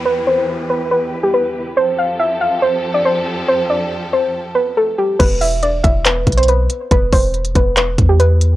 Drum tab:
CC |--------------------------------|--------------------------------|--------------------------------|x-------------------------------|
HH |--------------------------------|--------------------------------|--------------------------------|x---o---x---x---x---xxxxx---x---|
CP |--------------------------------|--------------------------------|--------------------------------|----------------x---------------|
BD |--------------------------------|--------------------------------|--------------------------------|o-----------o-------o-----------|

CC |--------------------------------|
HH |x---o---x-x-x---x---x---x---x---|
CP |----------------x---------------|
BD |o---o-------o-------o-----------|